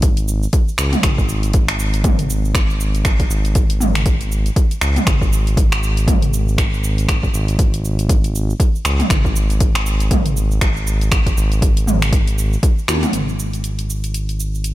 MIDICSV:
0, 0, Header, 1, 3, 480
1, 0, Start_track
1, 0, Tempo, 504202
1, 984, Time_signature, 4, 2, 24, 8
1, 14032, End_track
2, 0, Start_track
2, 0, Title_t, "Analog synth bass"
2, 0, Program_c, 0, 38
2, 0, Note_on_c, 0, 32, 100
2, 445, Note_off_c, 0, 32, 0
2, 743, Note_on_c, 0, 37, 97
2, 910, Note_off_c, 0, 37, 0
2, 986, Note_on_c, 0, 32, 99
2, 3086, Note_off_c, 0, 32, 0
2, 3143, Note_on_c, 0, 32, 98
2, 4285, Note_off_c, 0, 32, 0
2, 4585, Note_on_c, 0, 37, 97
2, 4751, Note_off_c, 0, 37, 0
2, 4823, Note_on_c, 0, 32, 97
2, 6925, Note_off_c, 0, 32, 0
2, 6984, Note_on_c, 0, 32, 101
2, 8125, Note_off_c, 0, 32, 0
2, 8424, Note_on_c, 0, 37, 99
2, 8590, Note_off_c, 0, 37, 0
2, 8665, Note_on_c, 0, 32, 100
2, 10766, Note_off_c, 0, 32, 0
2, 10824, Note_on_c, 0, 32, 100
2, 11965, Note_off_c, 0, 32, 0
2, 12262, Note_on_c, 0, 39, 86
2, 12429, Note_off_c, 0, 39, 0
2, 12502, Note_on_c, 0, 32, 85
2, 14032, Note_off_c, 0, 32, 0
2, 14032, End_track
3, 0, Start_track
3, 0, Title_t, "Drums"
3, 21, Note_on_c, 9, 42, 64
3, 25, Note_on_c, 9, 36, 120
3, 28, Note_on_c, 9, 69, 54
3, 116, Note_off_c, 9, 42, 0
3, 120, Note_off_c, 9, 36, 0
3, 123, Note_off_c, 9, 69, 0
3, 162, Note_on_c, 9, 42, 30
3, 169, Note_on_c, 9, 69, 25
3, 257, Note_off_c, 9, 42, 0
3, 264, Note_off_c, 9, 69, 0
3, 268, Note_on_c, 9, 69, 93
3, 363, Note_off_c, 9, 69, 0
3, 409, Note_on_c, 9, 69, 40
3, 503, Note_on_c, 9, 42, 60
3, 504, Note_off_c, 9, 69, 0
3, 505, Note_on_c, 9, 36, 122
3, 510, Note_on_c, 9, 69, 53
3, 599, Note_off_c, 9, 42, 0
3, 600, Note_off_c, 9, 36, 0
3, 605, Note_off_c, 9, 69, 0
3, 650, Note_on_c, 9, 69, 27
3, 742, Note_on_c, 9, 26, 82
3, 745, Note_off_c, 9, 69, 0
3, 748, Note_on_c, 9, 69, 90
3, 837, Note_off_c, 9, 26, 0
3, 843, Note_off_c, 9, 69, 0
3, 883, Note_on_c, 9, 42, 29
3, 883, Note_on_c, 9, 45, 86
3, 890, Note_on_c, 9, 69, 38
3, 978, Note_off_c, 9, 42, 0
3, 978, Note_off_c, 9, 45, 0
3, 983, Note_on_c, 9, 26, 83
3, 983, Note_on_c, 9, 42, 63
3, 985, Note_off_c, 9, 69, 0
3, 985, Note_on_c, 9, 36, 120
3, 989, Note_on_c, 9, 69, 54
3, 1078, Note_off_c, 9, 26, 0
3, 1078, Note_off_c, 9, 42, 0
3, 1081, Note_off_c, 9, 36, 0
3, 1085, Note_off_c, 9, 69, 0
3, 1126, Note_on_c, 9, 36, 65
3, 1131, Note_on_c, 9, 69, 27
3, 1222, Note_off_c, 9, 36, 0
3, 1226, Note_off_c, 9, 69, 0
3, 1227, Note_on_c, 9, 69, 92
3, 1323, Note_off_c, 9, 69, 0
3, 1362, Note_on_c, 9, 42, 29
3, 1369, Note_on_c, 9, 69, 39
3, 1457, Note_off_c, 9, 42, 0
3, 1461, Note_on_c, 9, 42, 62
3, 1464, Note_off_c, 9, 69, 0
3, 1465, Note_on_c, 9, 36, 122
3, 1468, Note_on_c, 9, 69, 53
3, 1557, Note_off_c, 9, 42, 0
3, 1560, Note_off_c, 9, 36, 0
3, 1563, Note_off_c, 9, 69, 0
3, 1604, Note_on_c, 9, 26, 81
3, 1604, Note_on_c, 9, 42, 41
3, 1610, Note_on_c, 9, 69, 27
3, 1699, Note_off_c, 9, 26, 0
3, 1699, Note_off_c, 9, 42, 0
3, 1706, Note_off_c, 9, 69, 0
3, 1707, Note_on_c, 9, 69, 93
3, 1803, Note_off_c, 9, 69, 0
3, 1844, Note_on_c, 9, 42, 41
3, 1851, Note_on_c, 9, 69, 39
3, 1939, Note_off_c, 9, 42, 0
3, 1944, Note_on_c, 9, 42, 64
3, 1944, Note_on_c, 9, 45, 94
3, 1945, Note_on_c, 9, 36, 124
3, 1946, Note_off_c, 9, 69, 0
3, 1950, Note_on_c, 9, 69, 57
3, 2039, Note_off_c, 9, 42, 0
3, 2039, Note_off_c, 9, 45, 0
3, 2040, Note_off_c, 9, 36, 0
3, 2045, Note_off_c, 9, 69, 0
3, 2084, Note_on_c, 9, 42, 29
3, 2090, Note_on_c, 9, 69, 26
3, 2179, Note_off_c, 9, 42, 0
3, 2185, Note_off_c, 9, 69, 0
3, 2190, Note_on_c, 9, 69, 96
3, 2285, Note_off_c, 9, 69, 0
3, 2332, Note_on_c, 9, 69, 40
3, 2424, Note_on_c, 9, 26, 88
3, 2424, Note_on_c, 9, 36, 120
3, 2424, Note_on_c, 9, 42, 61
3, 2428, Note_off_c, 9, 69, 0
3, 2431, Note_on_c, 9, 69, 54
3, 2519, Note_off_c, 9, 26, 0
3, 2519, Note_off_c, 9, 36, 0
3, 2519, Note_off_c, 9, 42, 0
3, 2526, Note_off_c, 9, 69, 0
3, 2571, Note_on_c, 9, 69, 28
3, 2666, Note_off_c, 9, 69, 0
3, 2670, Note_on_c, 9, 69, 91
3, 2765, Note_off_c, 9, 69, 0
3, 2805, Note_on_c, 9, 42, 27
3, 2811, Note_on_c, 9, 69, 40
3, 2900, Note_off_c, 9, 42, 0
3, 2902, Note_on_c, 9, 26, 81
3, 2902, Note_on_c, 9, 42, 63
3, 2903, Note_on_c, 9, 36, 120
3, 2906, Note_off_c, 9, 69, 0
3, 2909, Note_on_c, 9, 69, 52
3, 2997, Note_off_c, 9, 26, 0
3, 2997, Note_off_c, 9, 42, 0
3, 2998, Note_off_c, 9, 36, 0
3, 3004, Note_off_c, 9, 69, 0
3, 3043, Note_on_c, 9, 42, 29
3, 3044, Note_on_c, 9, 36, 62
3, 3050, Note_on_c, 9, 69, 26
3, 3138, Note_off_c, 9, 42, 0
3, 3140, Note_off_c, 9, 36, 0
3, 3145, Note_off_c, 9, 69, 0
3, 3148, Note_on_c, 9, 69, 90
3, 3243, Note_off_c, 9, 69, 0
3, 3283, Note_on_c, 9, 42, 29
3, 3290, Note_on_c, 9, 69, 41
3, 3378, Note_off_c, 9, 42, 0
3, 3380, Note_on_c, 9, 42, 63
3, 3383, Note_on_c, 9, 36, 120
3, 3385, Note_off_c, 9, 69, 0
3, 3387, Note_on_c, 9, 69, 52
3, 3475, Note_off_c, 9, 42, 0
3, 3478, Note_off_c, 9, 36, 0
3, 3482, Note_off_c, 9, 69, 0
3, 3522, Note_on_c, 9, 42, 41
3, 3528, Note_on_c, 9, 69, 26
3, 3617, Note_off_c, 9, 42, 0
3, 3622, Note_on_c, 9, 45, 87
3, 3623, Note_off_c, 9, 69, 0
3, 3628, Note_on_c, 9, 69, 92
3, 3717, Note_off_c, 9, 45, 0
3, 3724, Note_off_c, 9, 69, 0
3, 3764, Note_on_c, 9, 26, 77
3, 3764, Note_on_c, 9, 42, 42
3, 3770, Note_on_c, 9, 69, 39
3, 3859, Note_off_c, 9, 26, 0
3, 3859, Note_off_c, 9, 42, 0
3, 3862, Note_on_c, 9, 42, 64
3, 3863, Note_on_c, 9, 36, 122
3, 3866, Note_off_c, 9, 69, 0
3, 3868, Note_on_c, 9, 69, 54
3, 3957, Note_off_c, 9, 42, 0
3, 3959, Note_off_c, 9, 36, 0
3, 3963, Note_off_c, 9, 69, 0
3, 4005, Note_on_c, 9, 42, 29
3, 4012, Note_on_c, 9, 69, 27
3, 4100, Note_off_c, 9, 42, 0
3, 4107, Note_off_c, 9, 69, 0
3, 4110, Note_on_c, 9, 69, 95
3, 4205, Note_off_c, 9, 69, 0
3, 4245, Note_on_c, 9, 42, 29
3, 4251, Note_on_c, 9, 69, 40
3, 4340, Note_off_c, 9, 42, 0
3, 4344, Note_on_c, 9, 36, 121
3, 4345, Note_on_c, 9, 42, 61
3, 4346, Note_off_c, 9, 69, 0
3, 4352, Note_on_c, 9, 69, 54
3, 4439, Note_off_c, 9, 36, 0
3, 4440, Note_off_c, 9, 42, 0
3, 4447, Note_off_c, 9, 69, 0
3, 4486, Note_on_c, 9, 42, 29
3, 4492, Note_on_c, 9, 69, 26
3, 4581, Note_off_c, 9, 42, 0
3, 4583, Note_on_c, 9, 26, 78
3, 4587, Note_off_c, 9, 69, 0
3, 4590, Note_on_c, 9, 69, 90
3, 4678, Note_off_c, 9, 26, 0
3, 4685, Note_off_c, 9, 69, 0
3, 4725, Note_on_c, 9, 42, 30
3, 4725, Note_on_c, 9, 45, 92
3, 4731, Note_on_c, 9, 69, 39
3, 4820, Note_off_c, 9, 42, 0
3, 4820, Note_off_c, 9, 45, 0
3, 4824, Note_on_c, 9, 26, 76
3, 4824, Note_on_c, 9, 36, 114
3, 4824, Note_on_c, 9, 42, 67
3, 4827, Note_off_c, 9, 69, 0
3, 4831, Note_on_c, 9, 69, 51
3, 4919, Note_off_c, 9, 36, 0
3, 4920, Note_off_c, 9, 26, 0
3, 4920, Note_off_c, 9, 42, 0
3, 4926, Note_off_c, 9, 69, 0
3, 4965, Note_on_c, 9, 36, 62
3, 4973, Note_on_c, 9, 69, 26
3, 5060, Note_off_c, 9, 36, 0
3, 5068, Note_off_c, 9, 69, 0
3, 5072, Note_on_c, 9, 69, 87
3, 5167, Note_off_c, 9, 69, 0
3, 5209, Note_on_c, 9, 42, 31
3, 5215, Note_on_c, 9, 69, 38
3, 5304, Note_off_c, 9, 42, 0
3, 5304, Note_on_c, 9, 36, 118
3, 5306, Note_on_c, 9, 42, 65
3, 5310, Note_off_c, 9, 69, 0
3, 5313, Note_on_c, 9, 69, 49
3, 5400, Note_off_c, 9, 36, 0
3, 5402, Note_off_c, 9, 42, 0
3, 5408, Note_off_c, 9, 69, 0
3, 5447, Note_on_c, 9, 26, 79
3, 5447, Note_on_c, 9, 42, 43
3, 5454, Note_on_c, 9, 69, 26
3, 5543, Note_off_c, 9, 26, 0
3, 5543, Note_off_c, 9, 42, 0
3, 5549, Note_off_c, 9, 69, 0
3, 5552, Note_on_c, 9, 69, 91
3, 5648, Note_off_c, 9, 69, 0
3, 5686, Note_on_c, 9, 42, 43
3, 5693, Note_on_c, 9, 69, 38
3, 5781, Note_off_c, 9, 42, 0
3, 5785, Note_on_c, 9, 36, 117
3, 5786, Note_on_c, 9, 42, 66
3, 5786, Note_on_c, 9, 45, 92
3, 5788, Note_off_c, 9, 69, 0
3, 5792, Note_on_c, 9, 69, 52
3, 5880, Note_off_c, 9, 36, 0
3, 5881, Note_off_c, 9, 42, 0
3, 5881, Note_off_c, 9, 45, 0
3, 5888, Note_off_c, 9, 69, 0
3, 5926, Note_on_c, 9, 42, 31
3, 5932, Note_on_c, 9, 69, 26
3, 6021, Note_off_c, 9, 42, 0
3, 6027, Note_off_c, 9, 69, 0
3, 6031, Note_on_c, 9, 69, 89
3, 6126, Note_off_c, 9, 69, 0
3, 6174, Note_on_c, 9, 69, 39
3, 6265, Note_on_c, 9, 36, 118
3, 6267, Note_on_c, 9, 26, 85
3, 6267, Note_on_c, 9, 42, 65
3, 6269, Note_off_c, 9, 69, 0
3, 6273, Note_on_c, 9, 69, 49
3, 6360, Note_off_c, 9, 36, 0
3, 6362, Note_off_c, 9, 26, 0
3, 6362, Note_off_c, 9, 42, 0
3, 6368, Note_off_c, 9, 69, 0
3, 6414, Note_on_c, 9, 69, 26
3, 6509, Note_off_c, 9, 69, 0
3, 6511, Note_on_c, 9, 69, 88
3, 6606, Note_off_c, 9, 69, 0
3, 6647, Note_on_c, 9, 42, 30
3, 6653, Note_on_c, 9, 69, 38
3, 6742, Note_off_c, 9, 42, 0
3, 6745, Note_on_c, 9, 36, 112
3, 6746, Note_on_c, 9, 26, 79
3, 6746, Note_on_c, 9, 42, 71
3, 6749, Note_off_c, 9, 69, 0
3, 6753, Note_on_c, 9, 69, 50
3, 6840, Note_off_c, 9, 36, 0
3, 6841, Note_off_c, 9, 26, 0
3, 6841, Note_off_c, 9, 42, 0
3, 6848, Note_off_c, 9, 69, 0
3, 6886, Note_on_c, 9, 36, 58
3, 6892, Note_on_c, 9, 69, 25
3, 6981, Note_off_c, 9, 36, 0
3, 6988, Note_off_c, 9, 69, 0
3, 6990, Note_on_c, 9, 69, 87
3, 7085, Note_off_c, 9, 69, 0
3, 7125, Note_on_c, 9, 42, 32
3, 7131, Note_on_c, 9, 69, 37
3, 7220, Note_off_c, 9, 42, 0
3, 7225, Note_on_c, 9, 36, 110
3, 7225, Note_on_c, 9, 42, 68
3, 7226, Note_off_c, 9, 69, 0
3, 7231, Note_on_c, 9, 69, 49
3, 7320, Note_off_c, 9, 36, 0
3, 7320, Note_off_c, 9, 42, 0
3, 7327, Note_off_c, 9, 69, 0
3, 7367, Note_on_c, 9, 42, 45
3, 7373, Note_on_c, 9, 69, 25
3, 7462, Note_off_c, 9, 42, 0
3, 7469, Note_off_c, 9, 69, 0
3, 7471, Note_on_c, 9, 69, 86
3, 7566, Note_off_c, 9, 69, 0
3, 7606, Note_on_c, 9, 42, 45
3, 7612, Note_on_c, 9, 69, 36
3, 7701, Note_off_c, 9, 42, 0
3, 7706, Note_on_c, 9, 36, 116
3, 7706, Note_on_c, 9, 42, 71
3, 7708, Note_off_c, 9, 69, 0
3, 7713, Note_on_c, 9, 69, 49
3, 7801, Note_off_c, 9, 36, 0
3, 7801, Note_off_c, 9, 42, 0
3, 7808, Note_off_c, 9, 69, 0
3, 7847, Note_on_c, 9, 42, 32
3, 7854, Note_on_c, 9, 69, 25
3, 7942, Note_off_c, 9, 42, 0
3, 7949, Note_off_c, 9, 69, 0
3, 7953, Note_on_c, 9, 69, 85
3, 8048, Note_off_c, 9, 69, 0
3, 8093, Note_on_c, 9, 69, 38
3, 8185, Note_on_c, 9, 36, 115
3, 8186, Note_on_c, 9, 42, 65
3, 8189, Note_off_c, 9, 69, 0
3, 8193, Note_on_c, 9, 69, 49
3, 8280, Note_off_c, 9, 36, 0
3, 8282, Note_off_c, 9, 42, 0
3, 8288, Note_off_c, 9, 69, 0
3, 8333, Note_on_c, 9, 69, 25
3, 8425, Note_on_c, 9, 26, 77
3, 8429, Note_off_c, 9, 69, 0
3, 8431, Note_on_c, 9, 69, 88
3, 8520, Note_off_c, 9, 26, 0
3, 8527, Note_off_c, 9, 69, 0
3, 8566, Note_on_c, 9, 42, 32
3, 8566, Note_on_c, 9, 45, 91
3, 8572, Note_on_c, 9, 69, 36
3, 8661, Note_off_c, 9, 42, 0
3, 8661, Note_off_c, 9, 45, 0
3, 8664, Note_on_c, 9, 26, 79
3, 8664, Note_on_c, 9, 42, 69
3, 8665, Note_on_c, 9, 36, 112
3, 8668, Note_off_c, 9, 69, 0
3, 8671, Note_on_c, 9, 69, 51
3, 8760, Note_off_c, 9, 26, 0
3, 8760, Note_off_c, 9, 36, 0
3, 8760, Note_off_c, 9, 42, 0
3, 8766, Note_off_c, 9, 69, 0
3, 8806, Note_on_c, 9, 36, 58
3, 8813, Note_on_c, 9, 69, 26
3, 8901, Note_off_c, 9, 36, 0
3, 8908, Note_off_c, 9, 69, 0
3, 8911, Note_on_c, 9, 69, 88
3, 9006, Note_off_c, 9, 69, 0
3, 9045, Note_on_c, 9, 42, 33
3, 9052, Note_on_c, 9, 69, 36
3, 9140, Note_off_c, 9, 42, 0
3, 9144, Note_on_c, 9, 42, 67
3, 9145, Note_on_c, 9, 36, 111
3, 9147, Note_off_c, 9, 69, 0
3, 9150, Note_on_c, 9, 69, 50
3, 9239, Note_off_c, 9, 42, 0
3, 9240, Note_off_c, 9, 36, 0
3, 9246, Note_off_c, 9, 69, 0
3, 9284, Note_on_c, 9, 26, 81
3, 9284, Note_on_c, 9, 42, 46
3, 9291, Note_on_c, 9, 69, 25
3, 9380, Note_off_c, 9, 26, 0
3, 9380, Note_off_c, 9, 42, 0
3, 9386, Note_off_c, 9, 69, 0
3, 9389, Note_on_c, 9, 69, 86
3, 9484, Note_off_c, 9, 69, 0
3, 9524, Note_on_c, 9, 42, 45
3, 9530, Note_on_c, 9, 69, 36
3, 9619, Note_off_c, 9, 42, 0
3, 9624, Note_on_c, 9, 36, 109
3, 9624, Note_on_c, 9, 42, 73
3, 9624, Note_on_c, 9, 45, 90
3, 9625, Note_off_c, 9, 69, 0
3, 9631, Note_on_c, 9, 69, 52
3, 9719, Note_off_c, 9, 36, 0
3, 9719, Note_off_c, 9, 42, 0
3, 9719, Note_off_c, 9, 45, 0
3, 9726, Note_off_c, 9, 69, 0
3, 9764, Note_on_c, 9, 42, 33
3, 9771, Note_on_c, 9, 69, 25
3, 9859, Note_off_c, 9, 42, 0
3, 9866, Note_off_c, 9, 69, 0
3, 9870, Note_on_c, 9, 69, 85
3, 9965, Note_off_c, 9, 69, 0
3, 10010, Note_on_c, 9, 69, 37
3, 10104, Note_on_c, 9, 26, 88
3, 10104, Note_on_c, 9, 36, 113
3, 10104, Note_on_c, 9, 42, 71
3, 10105, Note_off_c, 9, 69, 0
3, 10111, Note_on_c, 9, 69, 49
3, 10199, Note_off_c, 9, 26, 0
3, 10199, Note_off_c, 9, 36, 0
3, 10199, Note_off_c, 9, 42, 0
3, 10206, Note_off_c, 9, 69, 0
3, 10250, Note_on_c, 9, 69, 25
3, 10345, Note_off_c, 9, 69, 0
3, 10350, Note_on_c, 9, 69, 84
3, 10445, Note_off_c, 9, 69, 0
3, 10486, Note_on_c, 9, 42, 31
3, 10492, Note_on_c, 9, 69, 37
3, 10581, Note_off_c, 9, 42, 0
3, 10582, Note_on_c, 9, 26, 85
3, 10582, Note_on_c, 9, 42, 70
3, 10584, Note_on_c, 9, 36, 113
3, 10587, Note_off_c, 9, 69, 0
3, 10589, Note_on_c, 9, 69, 51
3, 10678, Note_off_c, 9, 26, 0
3, 10678, Note_off_c, 9, 42, 0
3, 10679, Note_off_c, 9, 36, 0
3, 10684, Note_off_c, 9, 69, 0
3, 10725, Note_on_c, 9, 36, 61
3, 10725, Note_on_c, 9, 42, 32
3, 10732, Note_on_c, 9, 69, 26
3, 10820, Note_off_c, 9, 36, 0
3, 10821, Note_off_c, 9, 42, 0
3, 10827, Note_off_c, 9, 69, 0
3, 10830, Note_on_c, 9, 69, 87
3, 10925, Note_off_c, 9, 69, 0
3, 10964, Note_on_c, 9, 42, 31
3, 10971, Note_on_c, 9, 69, 37
3, 11059, Note_off_c, 9, 42, 0
3, 11064, Note_on_c, 9, 36, 112
3, 11064, Note_on_c, 9, 42, 68
3, 11066, Note_off_c, 9, 69, 0
3, 11071, Note_on_c, 9, 69, 50
3, 11159, Note_off_c, 9, 36, 0
3, 11160, Note_off_c, 9, 42, 0
3, 11166, Note_off_c, 9, 69, 0
3, 11205, Note_on_c, 9, 42, 46
3, 11212, Note_on_c, 9, 69, 25
3, 11301, Note_off_c, 9, 42, 0
3, 11304, Note_on_c, 9, 45, 79
3, 11307, Note_off_c, 9, 69, 0
3, 11310, Note_on_c, 9, 69, 87
3, 11399, Note_off_c, 9, 45, 0
3, 11405, Note_off_c, 9, 69, 0
3, 11446, Note_on_c, 9, 26, 83
3, 11446, Note_on_c, 9, 42, 45
3, 11452, Note_on_c, 9, 69, 37
3, 11541, Note_off_c, 9, 26, 0
3, 11541, Note_off_c, 9, 42, 0
3, 11543, Note_on_c, 9, 36, 118
3, 11545, Note_on_c, 9, 42, 69
3, 11547, Note_off_c, 9, 69, 0
3, 11551, Note_on_c, 9, 69, 51
3, 11639, Note_off_c, 9, 36, 0
3, 11640, Note_off_c, 9, 42, 0
3, 11647, Note_off_c, 9, 69, 0
3, 11686, Note_on_c, 9, 42, 33
3, 11692, Note_on_c, 9, 69, 25
3, 11781, Note_off_c, 9, 42, 0
3, 11788, Note_off_c, 9, 69, 0
3, 11789, Note_on_c, 9, 69, 91
3, 11884, Note_off_c, 9, 69, 0
3, 11930, Note_on_c, 9, 69, 38
3, 12023, Note_on_c, 9, 36, 114
3, 12023, Note_on_c, 9, 42, 67
3, 12025, Note_off_c, 9, 69, 0
3, 12030, Note_on_c, 9, 69, 50
3, 12119, Note_off_c, 9, 36, 0
3, 12119, Note_off_c, 9, 42, 0
3, 12125, Note_off_c, 9, 69, 0
3, 12171, Note_on_c, 9, 69, 26
3, 12264, Note_on_c, 9, 26, 82
3, 12264, Note_on_c, 9, 48, 59
3, 12266, Note_off_c, 9, 69, 0
3, 12270, Note_on_c, 9, 69, 86
3, 12359, Note_off_c, 9, 26, 0
3, 12359, Note_off_c, 9, 48, 0
3, 12365, Note_off_c, 9, 69, 0
3, 12404, Note_on_c, 9, 42, 31
3, 12404, Note_on_c, 9, 45, 85
3, 12404, Note_on_c, 9, 47, 72
3, 12410, Note_on_c, 9, 69, 38
3, 12499, Note_off_c, 9, 42, 0
3, 12499, Note_off_c, 9, 45, 0
3, 12499, Note_off_c, 9, 47, 0
3, 12501, Note_on_c, 9, 42, 61
3, 12505, Note_off_c, 9, 69, 0
3, 12508, Note_on_c, 9, 69, 48
3, 12596, Note_off_c, 9, 42, 0
3, 12603, Note_off_c, 9, 69, 0
3, 12651, Note_on_c, 9, 69, 23
3, 12746, Note_off_c, 9, 69, 0
3, 12751, Note_on_c, 9, 69, 80
3, 12846, Note_off_c, 9, 69, 0
3, 12885, Note_on_c, 9, 42, 28
3, 12892, Note_on_c, 9, 69, 35
3, 12980, Note_off_c, 9, 42, 0
3, 12985, Note_on_c, 9, 42, 59
3, 12987, Note_off_c, 9, 69, 0
3, 12991, Note_on_c, 9, 69, 47
3, 13080, Note_off_c, 9, 42, 0
3, 13086, Note_off_c, 9, 69, 0
3, 13126, Note_on_c, 9, 42, 40
3, 13132, Note_on_c, 9, 69, 23
3, 13221, Note_off_c, 9, 42, 0
3, 13227, Note_off_c, 9, 69, 0
3, 13231, Note_on_c, 9, 69, 83
3, 13327, Note_off_c, 9, 69, 0
3, 13364, Note_on_c, 9, 42, 39
3, 13371, Note_on_c, 9, 69, 34
3, 13459, Note_off_c, 9, 42, 0
3, 13465, Note_on_c, 9, 42, 61
3, 13466, Note_off_c, 9, 69, 0
3, 13471, Note_on_c, 9, 69, 50
3, 13560, Note_off_c, 9, 42, 0
3, 13566, Note_off_c, 9, 69, 0
3, 13604, Note_on_c, 9, 42, 28
3, 13611, Note_on_c, 9, 69, 24
3, 13700, Note_off_c, 9, 42, 0
3, 13706, Note_off_c, 9, 69, 0
3, 13707, Note_on_c, 9, 69, 83
3, 13802, Note_off_c, 9, 69, 0
3, 13848, Note_on_c, 9, 69, 36
3, 13940, Note_on_c, 9, 42, 61
3, 13944, Note_off_c, 9, 69, 0
3, 13946, Note_on_c, 9, 69, 47
3, 14032, Note_off_c, 9, 42, 0
3, 14032, Note_off_c, 9, 69, 0
3, 14032, End_track
0, 0, End_of_file